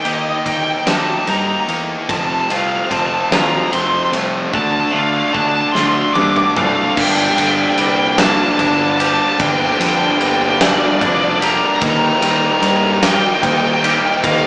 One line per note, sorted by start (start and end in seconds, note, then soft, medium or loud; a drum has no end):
0.00 1.68 D#3 medium
0.04 0.32 D#2 medium
0.04 0.45 D#3 medium
0.04 0.45 A#3 medium
0.04 0.45 D#4 medium
0.04 0.86 G4 medium
0.04 0.15 D#5 medium
0.04 ride medium
0.15 0.21 D#5 medium
0.21 0.29 D#5 medium
0.29 0.36 D#5 medium
0.36 0.44 D#5 medium
0.46 0.72 D#2 medium
0.46 0.85 D#3 medium
0.46 0.86 A#3 medium
0.46 0.86 D#4 medium
0.46 0.55 G5 medium
0.46 kick medium
0.46 ride medium
0.55 0.62 G5 medium
0.63 0.70 G5 medium
0.71 0.78 G5 medium
0.79 0.86 G5 medium
0.86 1.13 D#2 medium
0.86 1.27 D#3 medium
0.86 1.27 A#3 medium
0.86 1.28 D#4 medium
0.86 2.09 G4 medium
0.86 0.96 A5 loud
0.86 snare medium
0.86 ride medium
0.97 1.03 A5 medium
1.04 1.10 A5 medium
1.10 1.18 A5 medium
1.18 1.26 A5 medium
1.27 1.54 G2 medium
1.27 1.67 D#3 medium
1.27 1.68 A#3 medium
1.27 1.68 D#4 loud
1.27 1.37 A#5 medium
1.27 ride medium
1.38 1.45 A#5 medium
1.45 1.50 A#5 medium
1.51 1.58 A#5 medium
1.60 1.67 A#5 medium
1.68 1.94 E2 medium
1.68 2.07 D#3 medium
1.68 2.07 A#3 medium
1.68 2.07 D#4 medium
1.68 ride medium
2.09 2.36 F1 medium
2.09 2.48 F2 medium
2.09 2.49 C3 medium
2.09 2.51 F3 loud
2.09 2.17 A5 medium
2.09 kick loud
2.09 ride medium
2.17 2.24 A5 medium
2.25 2.31 A5 medium
2.31 2.39 A5 medium
2.40 2.48 A5 medium
2.50 2.76 C2 medium
2.50 2.88 F2 medium
2.50 2.89 C3 medium
2.50 2.90 F3 medium
2.50 3.31 F4 medium
2.50 2.59 F5 medium
2.50 ride medium
2.59 2.67 F5 medium
2.68 2.75 F5 medium
2.76 2.84 F5 medium
2.85 2.93 F5 medium
2.89 3.17 F1 medium
2.89 3.29 F2 medium
2.89 3.30 C3 medium
2.89 3.30 F3 medium
2.89 3.73 C4 medium
2.89 2.98 A5 medium
2.89 kick medium
2.89 ride medium
2.99 3.06 A5 medium
3.06 3.14 A5 medium
3.14 3.21 A5 medium
3.21 3.29 A5 medium
3.31 3.57 D#2 loud
3.31 3.70 F2 medium
3.31 3.71 C3 medium
3.31 3.71 F3 medium
3.31 4.54 F4 medium
3.31 3.41 A#5 medium
3.31 snare loud
3.31 ride medium
3.42 3.49 A#5 medium
3.49 3.57 A#5 medium
3.58 3.66 A#5 medium
3.66 3.73 A#5 medium
3.72 3.98 F1 medium
3.72 4.11 F2 medium
3.72 4.11 C3 medium
3.72 4.11 F3 medium
3.72 4.54 C4 medium
3.72 3.81 C6 loud
3.72 ride medium
3.81 3.87 C6 medium
3.87 3.95 C6 medium
3.95 4.03 C6 medium
4.03 4.10 C6 medium
4.11 4.38 C2 medium
4.11 4.50 F2 medium
4.11 4.51 C3 medium
4.11 4.51 F3 medium
4.11 4.54 A3 medium
4.11 ride medium
4.52 4.80 D2 medium
4.52 4.91 D3 medium
4.52 4.92 A3 loud
4.52 4.92 D4 loud
4.52 4.63 A5 medium
4.52 kick loud
4.63 4.71 A5 medium
4.71 4.79 A5 medium
4.80 4.88 A5 medium
4.89 5.31 D3 medium
4.89 5.32 A3 medium
4.89 4.98 F5 medium
4.89 4.97 A5 medium
4.93 5.20 D2 medium
4.93 5.32 D4 medium
4.93 5.76 F4 medium
4.99 5.05 F5 medium
5.06 5.13 F5 medium
5.13 5.19 F5 medium
5.19 5.27 F5 medium
5.28 5.35 F5 medium
5.33 5.61 D2 medium
5.33 5.73 D3 medium
5.33 5.73 A3 medium
5.33 5.74 D4 medium
5.33 5.39 A5 medium
5.33 kick medium
5.40 5.47 A5 medium
5.48 5.54 A5 medium
5.54 5.61 A5 medium
5.61 5.68 A5 medium
5.69 5.76 A5 medium
5.69 5.79 C6 loud
5.74 6.01 D2 loud
5.74 6.14 D3 medium
5.74 6.14 A3 medium
5.74 6.14 D4 loud
5.74 6.98 F4 medium
5.74 snare medium
5.79 5.86 C6 medium
5.86 5.93 C6 loud
5.93 6.01 C6 medium
6.01 6.08 C6 loud
6.08 6.13 C6 medium
6.14 6.42 G2 loud
6.14 6.55 D3 medium
6.14 6.55 A3 loud
6.14 6.56 D4 loud
6.14 6.21 D6 loud
6.14 high tom medium
6.22 6.29 D6 medium
6.30 6.36 D6 medium
6.36 6.44 D6 medium
6.36 mid tom medium
6.45 6.52 D6 medium
6.56 6.83 C2 medium
6.56 6.94 D3 medium
6.56 6.94 A3 medium
6.56 6.95 D4 loud
6.56 6.66 F5 medium
6.56 mid tom loud
6.66 6.74 F5 medium
6.75 6.82 F5 medium
6.82 6.90 F5 medium
6.91 7.00 F5 medium
6.96 7.25 G1 loud
6.96 8.19 G2 medium
6.96 7.77 D3 medium
6.96 7.39 G3 loud
6.96 7.37 A#3 loud
6.96 7.37 D4 loud
6.96 kick loud
6.96 crash loud
7.00 7.08 G5 loud
7.08 7.16 G5 medium
7.16 7.23 G5 medium
7.23 7.31 G5 medium
7.31 7.39 G5 medium
7.37 7.65 G1 medium
7.37 9.40 D3 medium
7.37 8.18 G3 medium
7.37 8.17 A#3 medium
7.37 8.16 D4 medium
7.37 7.46 G5 medium
7.37 ride medium
7.46 7.54 G5 loud
7.54 7.62 G5 medium
7.63 7.69 G5 medium
7.70 7.77 G5 medium
7.77 8.34 C2 medium
7.77 8.18 D3 medium
7.77 8.19 G3 medium
7.77 10.20 G3 medium
7.77 8.18 A#3 medium
7.77 8.17 D4 medium
7.77 7.84 G5 loud
7.77 ride medium
7.85 7.92 G5 medium
7.93 7.99 G5 medium
7.99 8.07 G5 medium
8.08 8.16 G5 medium
8.18 9.00 G2 medium
8.18 8.57 D3 medium
8.18 8.58 G3 medium
8.18 8.59 A#3 medium
8.18 8.59 D4 medium
8.18 8.27 A5 loud
8.18 snare loud
8.18 ride loud
8.27 8.35 A5 medium
8.36 8.43 A5 medium
8.44 8.51 A5 medium
8.52 8.58 A5 medium
8.58 9.15 G1 loud
8.58 9.39 D3 medium
8.58 9.01 G3 medium
8.58 9.00 A#3 medium
8.58 8.97 D4 medium
8.58 8.66 A5 medium
8.58 kick medium
8.58 ride medium
8.66 8.74 A5 loud
8.74 8.82 A5 medium
8.82 8.89 A5 medium
8.90 8.97 A5 medium
8.98 9.40 G3 medium
8.98 9.41 A#3 medium
8.98 9.41 D4 medium
8.98 11.41 G4 medium
8.98 9.05 A5 medium
8.98 ride medium
9.05 9.13 A5 medium
9.13 9.21 A5 loud
9.21 9.29 A5 medium
9.29 9.37 A5 medium
9.39 9.67 G1 loud
9.39 10.20 G2 medium
9.39 10.21 D3 medium
9.39 9.81 G3 loud
9.39 9.80 A#3 medium
9.39 9.78 D4 loud
9.39 9.49 G5 loud
9.39 kick loud
9.39 ride loud
9.49 9.56 G5 medium
9.56 9.64 G5 medium
9.65 9.71 G5 medium
9.72 9.79 G5 loud
9.79 10.07 F2 medium
9.79 11.82 D3 medium
9.79 10.61 G3 medium
9.79 10.60 A#3 medium
9.79 10.59 D4 medium
9.79 9.87 G5 medium
9.79 ride medium
9.87 9.95 G5 loud
9.97 10.03 G5 medium
10.03 10.11 G5 medium
10.12 10.17 G5 medium
10.17 10.76 G1 medium
10.17 10.60 D3 medium
10.17 10.61 G3 medium
10.17 12.22 G3 medium
10.17 10.61 A#3 loud
10.17 10.25 G5 medium
10.17 ride medium
10.22 10.59 D4 medium
10.27 10.33 G5 medium
10.34 10.41 G5 loud
10.41 10.49 G5 medium
10.50 10.58 G5 medium
10.60 11.42 G2 medium
10.60 11.00 D3 medium
10.60 11.01 G3 medium
10.60 11.02 A#3 medium
10.60 11.02 D4 medium
10.60 10.69 D5 loud
10.60 snare loud
10.60 ride loud
10.70 10.77 D5 medium
10.77 10.84 D5 medium
10.84 10.91 D5 medium
10.92 10.98 D5 loud
10.99 11.57 F1 loud
10.99 11.79 D3 medium
10.99 11.43 G3 medium
10.99 11.42 A#3 medium
10.99 11.40 D4 medium
10.99 11.06 D5 medium
10.99 kick medium
10.99 ride medium
11.06 11.14 D5 loud
11.15 11.21 D5 medium
11.21 11.29 D5 loud
11.30 11.36 D5 medium
11.37 11.44 D5 medium
11.41 11.82 G3 medium
11.41 11.83 A#3 medium
11.41 11.79 D4 medium
11.41 13.84 G4 medium
11.41 11.50 A#5 loud
11.41 ride medium
11.51 11.57 A#5 medium
11.58 11.66 A#5 loud
11.66 11.74 A#5 medium
11.75 11.82 A#5 loud
11.81 12.10 D#2 loud
11.81 13.05 D#3 loud
11.81 12.25 G3 medium
11.81 12.23 A#3 loud
11.81 12.22 D#4 loud
11.81 11.90 A#5 medium
11.81 kick loud
11.81 ride loud
11.90 11.97 A#5 loud
11.98 12.04 A#5 medium
12.05 12.12 A#5 loud
12.14 12.22 A#5 medium
12.21 12.49 D#2 loud
12.21 13.04 G3 medium
12.21 13.03 A#3 medium
12.21 13.01 D#4 medium
12.21 12.29 A#5 loud
12.21 ride medium
12.30 12.36 A#5 medium
12.37 12.44 A#5 loud
12.45 12.52 A#5 medium
12.53 12.60 A#5 medium
12.61 13.17 G2 loud
12.61 13.03 D#3 medium
12.61 14.47 G3 medium
12.61 13.03 G3 medium
12.61 13.03 A#3 loud
12.61 13.01 D#4 loud
12.61 12.68 A#5 medium
12.61 ride loud
12.69 12.76 A#5 loud
12.76 12.84 A#5 medium
12.84 12.92 A#5 medium
12.92 13.00 A#5 medium
13.03 13.41 D#3 medium
13.03 13.43 G3 medium
13.03 13.44 A#3 medium
13.03 13.44 D#4 loud
13.03 13.12 G5 loud
13.03 snare loud
13.03 ride loud
13.12 13.19 G5 medium
13.20 13.27 G5 loud
13.27 13.34 G5 medium
13.34 13.42 G5 loud
13.42 13.99 D#2 loud
13.42 14.22 D#3 medium
13.42 13.84 G3 loud
13.42 13.83 A#3 loud
13.42 13.81 D#4 medium
13.42 13.50 G5 medium
13.42 kick medium
13.42 ride loud
13.50 13.58 G5 loud
13.58 13.65 G5 medium
13.66 13.74 G5 loud
13.74 13.81 G5 medium
13.82 14.23 G3 medium
13.82 14.24 A#3 medium
13.82 14.24 D#4 medium
13.82 14.47 G4 medium
13.82 13.89 G5 loud
13.82 ride medium
13.90 13.96 G5 medium
13.97 14.04 G5 loud
14.06 14.12 G5 medium
14.12 14.20 G5 medium
14.23 14.47 D#2 loud
14.23 14.47 D#3 medium
14.23 14.47 G3 loud
14.23 14.47 A#3 loud
14.23 14.47 D#4 loud
14.23 14.31 F5 loud
14.23 kick loud
14.23 ride loud
14.31 14.38 F5 medium
14.38 14.46 F5 medium